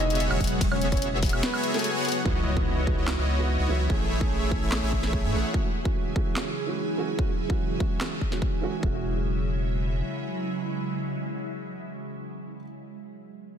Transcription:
Already playing: E1 C#3 F#3 G#3 B3 E4 F#4 G#4 C#5 E5
0.00 D#4 D#5
0.10 closed hi-hat
0.15 closed hi-hat
0.20 closed hi-hat
0.30 E1 B3 F#4 G#4 C#5 E5, high woodblock
0.40 E1 B3 F#4 G#4 C#5 F#5, kick, closed hi-hat
0.44 closed hi-hat
0.47 closed hi-hat
0.61 E1 B3 F#4 G#4 C#5 E5, kick, closed hi-hat, ride
0.72 C#4 C#5, high woodblock
0.81 closed hi-hat
0.92 C#4 C#5, kick, closed hi-hat
0.97 closed hi-hat
1.02 closed hi-hat
1.22 kick, closed hi-hat, open hi-hat
1.29 E1 B3 F#4 G#4 C#5 E5, closed hi-hat, high woodblock
1.43 B3 B4, snare, closed hi-hat
1.53 B3 F#4 G#4 C#5 E5, high woodblock
1.64 closed hi-hat
1.74 A3 B3 F#4 G#4 A4 C#5 G#5, snare, closed hi-hat
1.79 closed hi-hat
1.84 closed hi-hat
1.95 B3 F#4 G#4 C#5 F#5
2.05 B3 F#4 G#4 C#5 F#5, closed hi-hat
2.08 closed hi-hat
2.12 closed hi-hat
2.24 C#2 E3 B3 D#4 E4 F#4 C#5 D#5, kick, impact
2.56 E3 B3 D#4 F#4, kick
2.86 E3 B3 D#4 F#4, kick
2.98 C#2 B3 E4 F#4 C#5 D#5
3.07 E3 B3 D#4 F#4, snare, clap
3.18 C#2 B3 E4 F#4 C#5 D#5
3.38 E3 B3 D#4 F#4
3.59 C#2 B3 E4 F#4 C#5 D#5
3.68 C#2 E3 B3 D#4 E4 F#4 C#5 E5
3.89 A1 C#3 E3 A3 C#4 E4 G#4 C#5 E5, kick
4.20 E3 A3 C#4 G#4, kick
4.51 E3 A3 C#4 G#4, kick
4.62 A1 A3 E4 G#4 C#5 E5
4.71 E3 A3 C#4 G#4, snare, clap
4.83 A1 A3 E4 G#4 C#5 E5
4.93 kick
5.02 E3 A3 C#4 G#4, snare
5.13 kick
5.24 A2 A3 E4 G#4 C#5 E5
5.32 A1 E3 A3 C#4 E4 G#4 C#5 F#5
5.53 E3 F#3 G#3 C#4 F#4, kick
5.84 E3 G#3 C#4 F#4, kick
6.15 E3 G#3 C#4 F#4, kick
6.35 E3 G#3 C#4 F#4, snare, clap
6.66 E3 G#3 C#4 F#4
6.97 E3 G#3 C#4 F#4
7.17 E3 G#3 C#4 F#4, kick
7.48 E3 G#3 C#4 F#4, kick
7.79 E3 G#3 C#4 F#4, kick
8.00 E3 G#3 C#4 F#4, snare, clap
8.21 kick
8.31 E3 G#3 C#4 F#4, snare
8.42 kick
8.61 E3 G#3 C#4 F#4
8.80 E1 C#3 E3 F#3 G#3 C#4 E4, kick
8.86 F#4

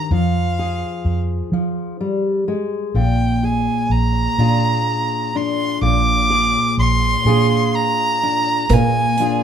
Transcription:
Already playing: G2 D#3 F3
0.11 F2 F3
0.15 F5
0.59 G#4
1.05 F2
1.52 F3
2.00 G3
2.48 G#3
2.94 A#1 A#2 G5
3.43 G#4 G#5
3.90 A#1 A#5
4.38 A#2 D4 F4 G#4
5.35 D4 C6
5.82 A#1 A#2 D6
6.30 G#4
6.78 A#1 C6
7.25 A#2 D4 F4 G#4
7.76 A#5
8.23 D4
8.69 A#2 A#4, kick, closed hi-hat
8.74 G#5
9.17 D4 F4 G#4, closed hi-hat

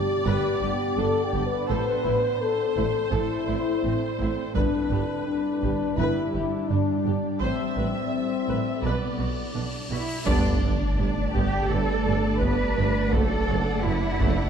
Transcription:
Already playing: B3 D4 G4 D5
0.26 G1 G2 G4 B4
0.62 G1 G2 G4
0.98 G1 G2 D4 A4
1.24 G4
1.34 G1 G2 G4
1.46 B4
1.69 A1 A2 C4 E4 A4 C5
2.05 A1 A2 E4
2.42 A4
2.77 A1 A2 E4
3.12 A1 A2 E4 A4
3.48 A1 A2 E4
3.84 A1 A2 C4
4.20 A1 A2 E4
4.55 G1 G2 G3 D4 G4 B4 D5, taiko
4.91 G1 G2 G4
5.27 D4
5.63 G1 G2 G4, taiko
5.97 G1 G2 E4 B4
6.35 G1 G2 G4
6.69 G1 G2 D4
7.05 G1 G2 G4
7.41 A1 A2 C4 C5 E5, cymbal swell
7.76 A1 A2 B4
8.48 A1 A2 B4
8.84 B1 B2 B3 B4 D5
9.19 B1 B2 F#4
9.55 B1 B2 D4
9.91 B1 B2 E4 F#4
10.25 G1 G2 G3 A3 B3 D4 G4 A4 B4 D5 A5, taiko, sub drop
10.62 G1 G2 A3
10.98 G1 G2 G3
11.34 G1 G2 B3 G4, taiko
11.68 G1 G2 G3 A3 B3 A4
12.06 G1 G2 G3
12.40 G1 G2 B3 B4, taiko
12.77 G1 G2 A3
13.11 F#1 F#2 F#3 A3 D4 F#4 A4 D5 F#5, taiko
13.48 F#1 F#2 F#3
13.84 F#1 F#2 D3 E4
14.20 F#1 F#2 A3, taiko

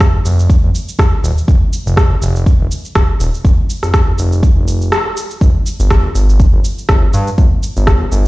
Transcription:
Already playing: F1
0.00 kick, cross-stick, cabasa
0.25 F1, cabasa
0.39 cabasa
0.50 kick, cabasa
0.63 F1
0.75 cabasa
0.89 cabasa
0.99 F1, kick, cross-stick, cabasa
1.23 D#1, cabasa
1.38 cabasa
1.48 F1, kick, cabasa
1.73 cabasa
1.86 F1, cabasa
1.97 kick, cross-stick, cabasa
2.22 F1, cabasa
2.36 cabasa
2.46 kick, cabasa
2.60 F1
2.71 cabasa
2.85 cabasa
2.95 F1, kick, cross-stick, cabasa
3.20 D#1, cabasa
3.34 cabasa
3.45 F1, kick, cabasa
3.70 cabasa
3.83 F1, cross-stick, cabasa
3.94 kick, cross-stick, cabasa
4.18 F1, cabasa
4.32 cabasa
4.43 kick, cabasa
4.56 F1
4.68 cabasa
4.82 cabasa
4.92 cross-stick, cabasa
5.17 cabasa
5.31 cabasa
5.41 G1, kick, cabasa
5.66 cabasa
5.79 G1, cabasa
5.90 kick, cross-stick, cabasa
6.15 G1, cabasa
6.29 cabasa
6.40 kick, cabasa
6.53 G1
6.64 cabasa
6.78 cabasa
6.89 G1, kick, cross-stick, cabasa
7.13 G2, cabasa
7.27 cabasa
7.38 G1, kick, cabasa
7.63 cabasa
7.76 G1, cabasa
7.87 kick, cross-stick, cabasa
8.12 G1, cabasa

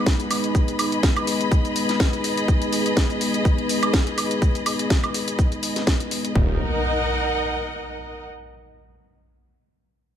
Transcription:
Already playing: G#3 B3 D#4 G#4 B4 D#5 F#5 B5
0.06 kick, snare, shaker
0.20 closed hi-hat, shaker
0.31 open hi-hat, high woodblock, shaker
0.44 closed hi-hat, shaker
0.55 kick, shaker
0.68 closed hi-hat, shaker
0.79 open hi-hat, high woodblock, shaker
0.92 closed hi-hat, shaker
1.03 kick, snare, shaker
1.16 closed hi-hat, high woodblock, shaker
1.27 open hi-hat, shaker
1.41 closed hi-hat, shaker
1.52 kick, shaker
1.65 closed hi-hat, shaker
1.76 open hi-hat, shaker
1.89 snare, closed hi-hat, shaker
2.00 kick, snare, shaker
2.13 closed hi-hat, shaker
2.24 open hi-hat, shaker
2.37 closed hi-hat, shaker
2.48 kick, shaker
2.62 closed hi-hat, shaker
2.73 open hi-hat, shaker
2.86 closed hi-hat, shaker
2.97 kick, snare, shaker
3.10 closed hi-hat, shaker
3.21 open hi-hat, shaker
3.34 closed hi-hat, shaker
3.45 kick, shaker
3.58 closed hi-hat
3.69 open hi-hat, shaker
3.83 closed hi-hat, high woodblock, shaker
3.94 kick, snare, shaker
4.07 closed hi-hat, shaker
4.18 open hi-hat, high woodblock, shaker
4.31 closed hi-hat, shaker
4.42 kick, shaker
4.55 closed hi-hat, shaker
4.66 open hi-hat, high woodblock, shaker
4.79 closed hi-hat, shaker
4.90 kick, snare, shaker
5.04 closed hi-hat, high woodblock, shaker
5.14 open hi-hat, shaker
5.28 closed hi-hat, shaker
5.39 kick, shaker
5.52 closed hi-hat, shaker
5.63 open hi-hat, shaker
5.76 snare, closed hi-hat, shaker
5.87 kick, snare, shaker
6.00 closed hi-hat, shaker
6.11 open hi-hat, shaker
6.25 closed hi-hat, shaker
6.35 D#1 D#4, kick, impact
6.43 A#4
6.51 D#5
6.57 F#5

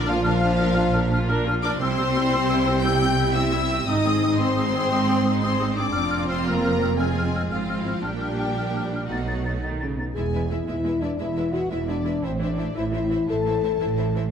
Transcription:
Already playing: A#1 A#2
0.06 F3 A#3 D4 F4 F5 F6
0.23 F3 D4 F4 A#4 F5 F6
0.41 A#3 D4 F4 F6
0.58 D4 A#4 F6
0.74 A#3 D4 F4 F6
0.94 D4 A#4 F6
1.11 A#3 D4 F4 F6
1.29 D4 A#4 F6
1.46 A#3 D4 F4 F6
1.62 D4 A#4 D5 D6 F6
1.79 C2 C3 G3 C4 E4 C5 C6 E6
1.98 C4 G4 E6
2.16 G3 C4 E4 E6
2.33 C4 G4 E6
2.50 G3 C4 E4 E6
2.67 C4 G4 E6
2.83 G3 C4 E4 G4 G5 E6 G6
3.01 C4 G4 E6
3.17 G3 C4 E4 E6
3.35 C4 E4 G4 E5 E6
3.52 G3 C4 E4 E6
3.70 C4 G4 E6
3.86 G#1 G#2 G#3 C4 D#4 D#5 D#6
4.05 C4 G#4 D#6
4.22 G#3 C4 D#4 D#6
4.39 C4 G#4 C5 C6 D#6
4.56 G#3 C4 D#4 D#6
4.73 C4 G#4 D#6
4.91 G#3 C4 D#4 D#6
5.08 C4 G#4 D#6
5.25 G#3 C4 D#4 D#6
5.41 C4 G#4 C5 C6 D#6
5.59 G#3 C4 D#4 D#6
5.76 C4 D4 G#4 D5 D6 D#6
5.92 F2 C4 F4 F6
5.96 F1 C4
6.11 C4 F6
6.28 C4 C5 C6 F6
6.45 A#3 C4 A#4 A#5 F6
6.65 C4 F6
6.82 C4 F6
6.99 G#3 C4 F4 G#4 G#5 F6
7.17 C4 F6
7.35 C4 F6
7.51 G#1 G#2 F3 C4 F4 F5 F6
7.68 C4 F6
7.78 E4
7.86 C4 F6
8.02 A#1 A#2 G3 A#3 D4 G4 G5 F6
8.21 D4 F6
8.38 D4 F6
8.56 D4 F6
8.74 D4 F6
8.92 D4 F6
9.07 B2 F#3 A3 D#4 F#4 F#5
9.11 B1 A6
9.26 D#4 A6
9.44 D#4 A6
9.62 D#3 D#4 A6
9.79 C#3 D#4 A6
9.98 B2 D#4 A6
10.14 E1 E2 G#3 E4 G#4 B4 E5 G#5
10.33 G#3 E4 B4 E5
10.50 G#3 E4 B4 E5
10.68 E1 E2 G#3 E4 B4 E5
10.84 G#3 E4 B4 E5
11.01 G#3 D4 E4 B4 D5 E5
11.19 E1 E2 G#3 E4 B4 E5
11.36 G#3 E4 B4 E5
11.53 G#3 E4 F#4 B4 E5 F#5
11.70 E1 E2 G#3 E4 B4 E5
11.87 G#3 D4 E4 B4 D5 E5
12.05 G#3 E4 B4 E5
12.22 A1 A2 E3 C4 E4 C5 E5
12.39 E3 D4 E4 C5 D5 E5
12.57 E3 E4 C5 E5
12.75 A1 A2 E3 E4 C5 E5
12.91 E3 E4 C5 E5
13.10 E3 E4 C5 E5
13.28 A1 A2 E3 E4 A4 C5 E5 A5
13.45 E3 E4 C5 E5
13.64 E3 E4 C5 E5
13.80 A1 A2 E3 E4 C5 E5
13.97 E3 E4 C5 E5
14.16 E3 E4 C5 E5

